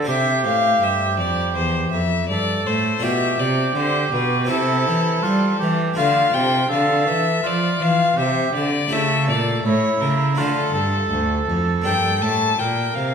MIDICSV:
0, 0, Header, 1, 5, 480
1, 0, Start_track
1, 0, Tempo, 737101
1, 53, Time_signature, 4, 2, 24, 8
1, 8559, End_track
2, 0, Start_track
2, 0, Title_t, "Violin"
2, 0, Program_c, 0, 40
2, 56, Note_on_c, 0, 76, 89
2, 279, Note_off_c, 0, 76, 0
2, 297, Note_on_c, 0, 77, 93
2, 542, Note_on_c, 0, 76, 85
2, 552, Note_off_c, 0, 77, 0
2, 770, Note_off_c, 0, 76, 0
2, 773, Note_on_c, 0, 74, 82
2, 1007, Note_off_c, 0, 74, 0
2, 1011, Note_on_c, 0, 72, 81
2, 1243, Note_off_c, 0, 72, 0
2, 1247, Note_on_c, 0, 76, 82
2, 1482, Note_off_c, 0, 76, 0
2, 1486, Note_on_c, 0, 74, 97
2, 1733, Note_on_c, 0, 72, 83
2, 1743, Note_off_c, 0, 74, 0
2, 1970, Note_on_c, 0, 76, 99
2, 1980, Note_off_c, 0, 72, 0
2, 2210, Note_on_c, 0, 74, 84
2, 2220, Note_off_c, 0, 76, 0
2, 2451, Note_off_c, 0, 74, 0
2, 2454, Note_on_c, 0, 72, 92
2, 2687, Note_off_c, 0, 72, 0
2, 2691, Note_on_c, 0, 71, 87
2, 2921, Note_off_c, 0, 71, 0
2, 2925, Note_on_c, 0, 69, 96
2, 3751, Note_off_c, 0, 69, 0
2, 3889, Note_on_c, 0, 77, 98
2, 4126, Note_on_c, 0, 79, 100
2, 4136, Note_off_c, 0, 77, 0
2, 4362, Note_off_c, 0, 79, 0
2, 4366, Note_on_c, 0, 77, 90
2, 4604, Note_on_c, 0, 76, 94
2, 4614, Note_off_c, 0, 77, 0
2, 4858, Note_on_c, 0, 74, 93
2, 4868, Note_off_c, 0, 76, 0
2, 5089, Note_on_c, 0, 77, 97
2, 5099, Note_off_c, 0, 74, 0
2, 5325, Note_off_c, 0, 77, 0
2, 5329, Note_on_c, 0, 76, 92
2, 5561, Note_off_c, 0, 76, 0
2, 5564, Note_on_c, 0, 74, 98
2, 5809, Note_on_c, 0, 76, 97
2, 5819, Note_off_c, 0, 74, 0
2, 6044, Note_off_c, 0, 76, 0
2, 6048, Note_on_c, 0, 74, 90
2, 6278, Note_off_c, 0, 74, 0
2, 6282, Note_on_c, 0, 73, 96
2, 6515, Note_on_c, 0, 70, 83
2, 6525, Note_off_c, 0, 73, 0
2, 6754, Note_on_c, 0, 69, 84
2, 6763, Note_off_c, 0, 70, 0
2, 7601, Note_off_c, 0, 69, 0
2, 7712, Note_on_c, 0, 79, 97
2, 7956, Note_on_c, 0, 81, 95
2, 7966, Note_off_c, 0, 79, 0
2, 8197, Note_on_c, 0, 79, 84
2, 8207, Note_off_c, 0, 81, 0
2, 8434, Note_on_c, 0, 77, 83
2, 8443, Note_off_c, 0, 79, 0
2, 8559, Note_off_c, 0, 77, 0
2, 8559, End_track
3, 0, Start_track
3, 0, Title_t, "Oboe"
3, 0, Program_c, 1, 68
3, 54, Note_on_c, 1, 67, 75
3, 1291, Note_off_c, 1, 67, 0
3, 1501, Note_on_c, 1, 69, 78
3, 1951, Note_off_c, 1, 69, 0
3, 1979, Note_on_c, 1, 67, 80
3, 2914, Note_off_c, 1, 67, 0
3, 2931, Note_on_c, 1, 64, 83
3, 3409, Note_on_c, 1, 65, 72
3, 3419, Note_off_c, 1, 64, 0
3, 3636, Note_off_c, 1, 65, 0
3, 3640, Note_on_c, 1, 67, 73
3, 3880, Note_off_c, 1, 67, 0
3, 3883, Note_on_c, 1, 65, 80
3, 4353, Note_off_c, 1, 65, 0
3, 4357, Note_on_c, 1, 69, 83
3, 4832, Note_off_c, 1, 69, 0
3, 4840, Note_on_c, 1, 65, 80
3, 5322, Note_on_c, 1, 67, 70
3, 5332, Note_off_c, 1, 65, 0
3, 5637, Note_off_c, 1, 67, 0
3, 5808, Note_on_c, 1, 69, 77
3, 6263, Note_off_c, 1, 69, 0
3, 6292, Note_on_c, 1, 64, 76
3, 6763, Note_on_c, 1, 65, 78
3, 6773, Note_off_c, 1, 64, 0
3, 6991, Note_off_c, 1, 65, 0
3, 6995, Note_on_c, 1, 69, 81
3, 8179, Note_off_c, 1, 69, 0
3, 8204, Note_on_c, 1, 70, 72
3, 8559, Note_off_c, 1, 70, 0
3, 8559, End_track
4, 0, Start_track
4, 0, Title_t, "Harpsichord"
4, 0, Program_c, 2, 6
4, 16, Note_on_c, 2, 60, 49
4, 30, Note_on_c, 2, 67, 48
4, 34, Note_on_c, 2, 72, 48
4, 49, Note_on_c, 2, 48, 56
4, 267, Note_off_c, 2, 48, 0
4, 292, Note_on_c, 2, 45, 57
4, 510, Note_off_c, 2, 45, 0
4, 527, Note_on_c, 2, 43, 57
4, 746, Note_off_c, 2, 43, 0
4, 764, Note_on_c, 2, 41, 48
4, 985, Note_off_c, 2, 41, 0
4, 1013, Note_on_c, 2, 40, 51
4, 1230, Note_off_c, 2, 40, 0
4, 1257, Note_on_c, 2, 41, 61
4, 1472, Note_off_c, 2, 41, 0
4, 1504, Note_on_c, 2, 43, 54
4, 1715, Note_off_c, 2, 43, 0
4, 1742, Note_on_c, 2, 45, 58
4, 1929, Note_off_c, 2, 60, 0
4, 1936, Note_off_c, 2, 67, 0
4, 1938, Note_off_c, 2, 72, 0
4, 1947, Note_on_c, 2, 62, 52
4, 1953, Note_on_c, 2, 65, 52
4, 1954, Note_off_c, 2, 45, 0
4, 1969, Note_on_c, 2, 67, 51
4, 1978, Note_on_c, 2, 47, 52
4, 2192, Note_off_c, 2, 47, 0
4, 2212, Note_on_c, 2, 48, 59
4, 2428, Note_off_c, 2, 48, 0
4, 2444, Note_on_c, 2, 50, 59
4, 2663, Note_off_c, 2, 50, 0
4, 2686, Note_on_c, 2, 47, 55
4, 2891, Note_off_c, 2, 62, 0
4, 2894, Note_off_c, 2, 65, 0
4, 2895, Note_on_c, 2, 60, 51
4, 2902, Note_off_c, 2, 67, 0
4, 2903, Note_off_c, 2, 47, 0
4, 2907, Note_on_c, 2, 64, 54
4, 2913, Note_on_c, 2, 67, 55
4, 2922, Note_on_c, 2, 48, 58
4, 3142, Note_off_c, 2, 48, 0
4, 3174, Note_on_c, 2, 52, 59
4, 3389, Note_off_c, 2, 52, 0
4, 3411, Note_on_c, 2, 55, 54
4, 3627, Note_off_c, 2, 55, 0
4, 3659, Note_on_c, 2, 52, 62
4, 3847, Note_off_c, 2, 60, 0
4, 3852, Note_off_c, 2, 64, 0
4, 3855, Note_off_c, 2, 67, 0
4, 3866, Note_on_c, 2, 57, 55
4, 3871, Note_off_c, 2, 52, 0
4, 3876, Note_on_c, 2, 62, 58
4, 3885, Note_on_c, 2, 65, 52
4, 3895, Note_on_c, 2, 50, 55
4, 4108, Note_off_c, 2, 50, 0
4, 4110, Note_off_c, 2, 57, 0
4, 4137, Note_on_c, 2, 48, 62
4, 4349, Note_off_c, 2, 48, 0
4, 4378, Note_on_c, 2, 50, 57
4, 4589, Note_off_c, 2, 50, 0
4, 4606, Note_on_c, 2, 52, 59
4, 4822, Note_off_c, 2, 52, 0
4, 4839, Note_on_c, 2, 53, 65
4, 5058, Note_off_c, 2, 53, 0
4, 5080, Note_on_c, 2, 52, 60
4, 5299, Note_off_c, 2, 52, 0
4, 5327, Note_on_c, 2, 48, 59
4, 5543, Note_off_c, 2, 48, 0
4, 5572, Note_on_c, 2, 50, 59
4, 5776, Note_off_c, 2, 62, 0
4, 5778, Note_on_c, 2, 57, 46
4, 5780, Note_off_c, 2, 65, 0
4, 5787, Note_off_c, 2, 50, 0
4, 5787, Note_on_c, 2, 64, 54
4, 5795, Note_on_c, 2, 67, 52
4, 5809, Note_on_c, 2, 49, 53
4, 6026, Note_off_c, 2, 49, 0
4, 6045, Note_on_c, 2, 46, 60
4, 6262, Note_off_c, 2, 46, 0
4, 6289, Note_on_c, 2, 45, 62
4, 6502, Note_off_c, 2, 45, 0
4, 6524, Note_on_c, 2, 49, 61
4, 6723, Note_off_c, 2, 57, 0
4, 6727, Note_off_c, 2, 64, 0
4, 6731, Note_off_c, 2, 67, 0
4, 6739, Note_off_c, 2, 49, 0
4, 6739, Note_on_c, 2, 57, 53
4, 6744, Note_on_c, 2, 62, 51
4, 6756, Note_on_c, 2, 65, 48
4, 6767, Note_on_c, 2, 50, 62
4, 6982, Note_off_c, 2, 50, 0
4, 6984, Note_off_c, 2, 57, 0
4, 7006, Note_on_c, 2, 43, 61
4, 7223, Note_off_c, 2, 43, 0
4, 7248, Note_on_c, 2, 38, 58
4, 7464, Note_off_c, 2, 38, 0
4, 7487, Note_on_c, 2, 41, 59
4, 7691, Note_off_c, 2, 62, 0
4, 7694, Note_on_c, 2, 58, 50
4, 7697, Note_off_c, 2, 65, 0
4, 7703, Note_off_c, 2, 41, 0
4, 7709, Note_on_c, 2, 62, 48
4, 7718, Note_on_c, 2, 67, 48
4, 7729, Note_on_c, 2, 43, 50
4, 7945, Note_off_c, 2, 43, 0
4, 7960, Note_on_c, 2, 45, 55
4, 8180, Note_off_c, 2, 45, 0
4, 8201, Note_on_c, 2, 46, 54
4, 8420, Note_off_c, 2, 46, 0
4, 8443, Note_on_c, 2, 48, 52
4, 8559, Note_off_c, 2, 48, 0
4, 8559, Note_off_c, 2, 58, 0
4, 8559, Note_off_c, 2, 62, 0
4, 8559, Note_off_c, 2, 67, 0
4, 8559, End_track
5, 0, Start_track
5, 0, Title_t, "Cello"
5, 0, Program_c, 3, 42
5, 51, Note_on_c, 3, 48, 71
5, 295, Note_on_c, 3, 45, 67
5, 305, Note_off_c, 3, 48, 0
5, 525, Note_off_c, 3, 45, 0
5, 529, Note_on_c, 3, 43, 64
5, 772, Note_on_c, 3, 41, 64
5, 782, Note_off_c, 3, 43, 0
5, 1014, Note_on_c, 3, 40, 70
5, 1024, Note_off_c, 3, 41, 0
5, 1248, Note_off_c, 3, 40, 0
5, 1251, Note_on_c, 3, 41, 66
5, 1491, Note_on_c, 3, 43, 69
5, 1500, Note_off_c, 3, 41, 0
5, 1729, Note_off_c, 3, 43, 0
5, 1733, Note_on_c, 3, 45, 69
5, 1961, Note_off_c, 3, 45, 0
5, 1965, Note_on_c, 3, 47, 65
5, 2204, Note_off_c, 3, 47, 0
5, 2211, Note_on_c, 3, 48, 74
5, 2446, Note_off_c, 3, 48, 0
5, 2451, Note_on_c, 3, 50, 73
5, 2686, Note_off_c, 3, 50, 0
5, 2691, Note_on_c, 3, 47, 74
5, 2933, Note_on_c, 3, 48, 77
5, 2943, Note_off_c, 3, 47, 0
5, 3175, Note_on_c, 3, 52, 68
5, 3185, Note_off_c, 3, 48, 0
5, 3409, Note_off_c, 3, 52, 0
5, 3413, Note_on_c, 3, 55, 74
5, 3647, Note_off_c, 3, 55, 0
5, 3661, Note_on_c, 3, 52, 79
5, 3891, Note_off_c, 3, 52, 0
5, 3900, Note_on_c, 3, 50, 77
5, 4127, Note_off_c, 3, 50, 0
5, 4131, Note_on_c, 3, 48, 77
5, 4362, Note_off_c, 3, 48, 0
5, 4366, Note_on_c, 3, 50, 76
5, 4608, Note_on_c, 3, 52, 72
5, 4618, Note_off_c, 3, 50, 0
5, 4839, Note_off_c, 3, 52, 0
5, 4843, Note_on_c, 3, 53, 79
5, 5074, Note_off_c, 3, 53, 0
5, 5078, Note_on_c, 3, 52, 72
5, 5317, Note_off_c, 3, 52, 0
5, 5321, Note_on_c, 3, 48, 75
5, 5558, Note_off_c, 3, 48, 0
5, 5562, Note_on_c, 3, 50, 76
5, 5801, Note_off_c, 3, 50, 0
5, 5807, Note_on_c, 3, 49, 71
5, 6046, Note_on_c, 3, 46, 77
5, 6056, Note_off_c, 3, 49, 0
5, 6280, Note_off_c, 3, 46, 0
5, 6284, Note_on_c, 3, 45, 74
5, 6513, Note_off_c, 3, 45, 0
5, 6517, Note_on_c, 3, 49, 63
5, 6755, Note_off_c, 3, 49, 0
5, 6759, Note_on_c, 3, 50, 66
5, 6989, Note_off_c, 3, 50, 0
5, 6993, Note_on_c, 3, 43, 69
5, 7235, Note_off_c, 3, 43, 0
5, 7240, Note_on_c, 3, 38, 70
5, 7475, Note_off_c, 3, 38, 0
5, 7478, Note_on_c, 3, 41, 72
5, 7722, Note_on_c, 3, 43, 65
5, 7732, Note_off_c, 3, 41, 0
5, 7962, Note_on_c, 3, 45, 68
5, 7971, Note_off_c, 3, 43, 0
5, 8198, Note_off_c, 3, 45, 0
5, 8201, Note_on_c, 3, 46, 69
5, 8440, Note_off_c, 3, 46, 0
5, 8451, Note_on_c, 3, 48, 62
5, 8559, Note_off_c, 3, 48, 0
5, 8559, End_track
0, 0, End_of_file